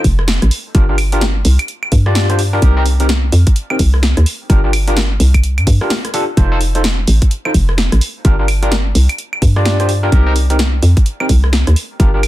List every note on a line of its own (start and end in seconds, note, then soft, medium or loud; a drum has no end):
0.04 0.40 F1 medium
0.04 kick medium
0.04 open hi-hat loud
0.19 cross-stick medium
0.28 snare loud
0.42 0.50 A1 medium
0.42 cross-stick medium
0.42 closed hi-hat medium
0.51 open hi-hat loud
0.75 1.43 G1 loud
0.75 0.84 D4 medium
0.75 0.84 F4 medium
0.75 0.84 G4 medium
0.75 0.84 A#4 medium
0.75 kick loud
0.75 closed hi-hat medium
0.89 0.95 D4 medium
0.89 0.95 F4 medium
0.89 0.95 G4 medium
0.89 0.95 A#4 medium
0.98 open hi-hat loud
0.98 claves medium
1.12 1.22 D4 loud
1.12 1.22 F4 medium
1.12 1.22 G4 medium
1.12 1.22 A#4 loud
1.12 closed hi-hat medium
1.21 snare loud
1.45 1.58 C2 medium
1.45 open hi-hat loud
1.59 closed hi-hat medium
1.59 claves medium
1.68 closed hi-hat medium
1.83 claves medium
1.92 2.61 G2 medium
1.92 kick loud
1.92 open hi-hat loud
2.06 2.26 D4 medium
2.06 2.26 F4 medium
2.06 2.26 G4 medium
2.06 2.26 D5 loud
2.06 cross-stick medium
2.15 snare loud
2.15 open hi-hat medium
2.30 2.40 D4 medium
2.30 2.40 F4 medium
2.30 2.40 G4 medium
2.30 2.40 C5 medium
2.30 cross-stick medium
2.30 closed hi-hat medium
2.39 open hi-hat loud
2.53 2.59 D4 loud
2.53 2.59 F4 medium
2.53 2.59 G4 medium
2.53 2.59 A#4 loud
2.62 3.31 C2 loud
2.62 2.74 C4 medium
2.62 2.74 G4 medium
2.62 2.74 A#4 medium
2.62 kick loud
2.62 closed hi-hat medium
2.77 2.83 C4 loud
2.77 2.83 D#4 medium
2.77 2.83 G4 medium
2.77 2.83 A#4 loud
2.86 open hi-hat loud
3.00 3.06 C4 medium
3.00 3.06 D#4 medium
3.00 3.06 G4 medium
3.00 3.06 A#4 loud
3.00 closed hi-hat medium
3.09 snare loud
3.32 3.45 F2 medium
3.32 open hi-hat loud
3.47 kick loud
3.47 closed hi-hat medium
3.56 closed hi-hat medium
3.70 3.76 C4 medium
3.70 3.76 D#4 medium
3.70 3.76 G4 medium
3.70 3.76 A#4 medium
3.70 claves medium
3.79 4.15 C2 loud
3.79 kick medium
3.79 open hi-hat loud
3.94 cross-stick medium
4.03 snare loud
4.17 4.25 D#2 medium
4.17 cross-stick medium
4.17 closed hi-hat medium
4.26 open hi-hat loud
4.50 5.18 G1 loud
4.50 4.59 D4 medium
4.50 4.59 F4 medium
4.50 4.59 G4 medium
4.50 4.59 A#4 loud
4.50 kick loud
4.50 closed hi-hat medium
4.64 4.70 D4 medium
4.64 4.70 F4 medium
4.64 4.70 G4 medium
4.64 4.70 A#4 medium
4.73 open hi-hat loud
4.73 claves medium
4.88 4.97 D4 loud
4.88 4.97 F4 medium
4.88 4.97 G4 medium
4.88 4.97 A#4 loud
4.88 closed hi-hat medium
4.97 snare loud
5.20 5.59 C2 medium
5.20 open hi-hat loud
5.34 kick medium
5.34 closed hi-hat medium
5.34 claves medium
5.43 closed hi-hat medium
5.58 5.66 G2 loud
5.58 closed hi-hat soft
5.58 claves medium
5.67 5.80 G2 medium
5.67 kick loud
5.67 open hi-hat loud
5.81 5.91 D4 medium
5.81 5.91 F4 medium
5.81 5.91 G4 medium
5.81 5.91 A#4 medium
5.81 cross-stick medium
5.90 snare loud
5.90 open hi-hat medium
6.05 cross-stick medium
6.05 closed hi-hat medium
6.14 6.23 D4 loud
6.14 6.23 F4 medium
6.14 6.23 G4 medium
6.14 6.23 A4 loud
6.14 open hi-hat loud
6.37 7.06 F1 loud
6.37 6.49 D#4 medium
6.37 6.49 F4 medium
6.37 6.49 A4 medium
6.37 6.49 C5 loud
6.37 kick loud
6.37 closed hi-hat medium
6.52 6.58 D#4 loud
6.52 6.58 F4 medium
6.52 6.58 A4 medium
6.52 6.58 C5 loud
6.61 open hi-hat loud
6.75 6.81 D#4 medium
6.75 6.81 F4 medium
6.75 6.81 A4 medium
6.75 6.81 C5 loud
6.75 closed hi-hat medium
6.84 snare loud
7.07 7.20 A1 medium
7.07 open hi-hat loud
7.22 kick loud
7.22 closed hi-hat medium
7.31 closed hi-hat medium
7.45 7.51 D#4 medium
7.45 7.51 F4 medium
7.45 7.51 A4 medium
7.45 7.51 C5 medium
7.45 claves medium
7.54 7.90 F1 loud
7.54 kick medium
7.54 open hi-hat loud
7.69 cross-stick medium
7.78 snare loud
7.92 8.00 A1 medium
7.92 cross-stick medium
7.92 closed hi-hat medium
8.01 open hi-hat loud
8.25 8.93 G1 loud
8.25 8.34 D4 medium
8.25 8.34 F4 medium
8.25 8.34 G4 medium
8.25 8.34 A#4 medium
8.25 kick loud
8.25 closed hi-hat medium
8.39 8.45 D4 medium
8.39 8.45 F4 medium
8.39 8.45 G4 medium
8.39 8.45 A#4 medium
8.48 open hi-hat loud
8.48 claves medium
8.63 8.72 D4 loud
8.63 8.72 F4 medium
8.63 8.72 G4 medium
8.63 8.72 A#4 loud
8.63 closed hi-hat medium
8.72 snare loud
8.95 9.08 C2 medium
8.95 open hi-hat loud
9.09 closed hi-hat medium
9.09 claves medium
9.18 closed hi-hat medium
9.33 claves medium
9.42 10.11 G2 medium
9.42 kick loud
9.42 open hi-hat loud
9.56 9.76 D4 medium
9.56 9.76 F4 medium
9.56 9.76 G4 medium
9.56 9.76 D5 loud
9.56 cross-stick medium
9.65 snare loud
9.65 open hi-hat medium
9.80 9.90 D4 medium
9.80 9.90 F4 medium
9.80 9.90 G4 medium
9.80 9.90 C5 medium
9.80 cross-stick medium
9.80 closed hi-hat medium
9.89 open hi-hat loud
10.03 10.09 D4 loud
10.03 10.09 F4 medium
10.03 10.09 G4 medium
10.03 10.09 A#4 loud
10.12 10.81 C2 loud
10.12 10.24 C4 medium
10.12 10.24 D#4 medium
10.12 10.24 G4 medium
10.12 10.24 A#4 loud
10.12 kick loud
10.12 closed hi-hat medium
10.27 10.33 C4 loud
10.27 10.33 D#4 medium
10.27 10.33 G4 medium
10.27 10.33 A#4 loud
10.36 open hi-hat loud
10.50 10.56 C4 medium
10.50 10.56 D#4 medium
10.50 10.56 G4 medium
10.50 10.56 A#4 loud
10.50 closed hi-hat medium
10.59 snare loud
10.83 10.95 F2 medium
10.83 open hi-hat loud
10.97 kick loud
10.97 closed hi-hat medium
11.06 closed hi-hat medium
11.20 11.26 C4 medium
11.20 11.26 D#4 medium
11.20 11.26 G4 medium
11.20 11.26 A#4 medium
11.20 claves medium
11.29 11.65 C2 loud
11.29 kick medium
11.29 open hi-hat loud
11.44 cross-stick medium
11.53 snare loud
11.67 11.75 D#2 medium
11.67 cross-stick medium
11.67 closed hi-hat medium
11.76 open hi-hat loud
12.00 12.28 G1 loud
12.00 12.09 D4 medium
12.00 12.09 F4 medium
12.00 12.09 G4 medium
12.00 12.09 A#4 medium
12.00 kick loud
12.00 closed hi-hat medium
12.14 12.20 D4 medium
12.14 12.20 F4 medium
12.14 12.20 G4 medium
12.14 12.20 A#4 medium
12.23 open hi-hat loud
12.23 claves medium